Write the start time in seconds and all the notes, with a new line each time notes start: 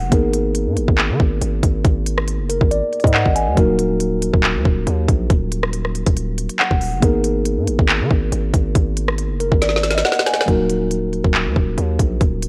Already playing: F#5
0.02 F#1
0.10 G#1 A#3 B3 D#4 G#4 A#4, kick, closed hi-hat
0.34 closed hi-hat
0.55 closed hi-hat
0.67 G#2
0.77 G#1, closed hi-hat
0.88 G#1, kick
0.98 clap
1.10 D#3
1.20 G#1, kick
1.42 G#1, closed hi-hat
1.63 G#1, kick, closed hi-hat
1.85 G#1, kick, closed hi-hat
2.06 closed hi-hat
2.18 cross-stick
2.28 closed hi-hat
2.39 F#1
2.49 A#4, closed hi-hat
2.61 G#1, kick
2.71 D5, closed hi-hat
2.93 closed hi-hat
3.00 closed hi-hat
3.04 G#2 D#5, kick, closed hi-hat
3.14 F#5, clap
3.26 G#1, kick
3.36 G#5, closed hi-hat
3.47 D#2
3.55 D#1 F#3 A#3 D#4 F#4, kick, closed hi-hat
3.59 A#4
3.79 closed hi-hat
4.00 closed hi-hat
4.22 closed hi-hat
4.34 D#1, kick
4.44 clap
4.55 D#2
4.65 D#1, kick
4.87 D#2, closed hi-hat
5.08 A#1, kick, closed hi-hat
5.30 D#1, kick, closed hi-hat
5.52 closed hi-hat
5.63 cross-stick
5.73 closed hi-hat
5.85 cross-stick
5.95 closed hi-hat
6.06 D#1, kick, closed hi-hat
6.16 closed hi-hat
6.38 closed hi-hat
6.49 closed hi-hat
6.59 F#5, clap
6.71 D#1, kick
6.81 open hi-hat
6.92 F#1
7.01 G#1 A#3 B3 D#4 G#4 A#4, kick, closed hi-hat
7.24 closed hi-hat
7.46 closed hi-hat
7.57 G#2
7.67 G#1, closed hi-hat
7.79 G#1, kick
7.89 clap
8.00 D#3
8.11 G#1, kick
8.32 G#1, closed hi-hat
8.54 G#1, kick, closed hi-hat
8.75 G#1, kick, closed hi-hat
8.97 closed hi-hat
9.08 cross-stick
9.18 closed hi-hat
9.30 F#1
9.40 A#4, closed hi-hat
9.52 G#1, kick
9.62 D5, snare, closed hi-hat
9.69 snare
9.76 snare
9.83 snare, closed hi-hat
9.90 snare, closed hi-hat
9.95 D#5, snare, closed hi-hat
10.05 F#5, snare
10.12 snare
10.19 snare
10.26 G#5, snare, closed hi-hat
10.34 snare
10.41 snare
10.46 D#1 F#3 A#3 D#4 F#4 A#4, kick, closed hi-hat
10.70 closed hi-hat
10.91 closed hi-hat
11.13 closed hi-hat
11.24 D#1, kick
11.34 clap
11.46 D#2
11.56 D#1, kick
11.77 D#2, closed hi-hat
11.99 A#1, kick, closed hi-hat
12.21 D#1, kick, closed hi-hat
12.42 closed hi-hat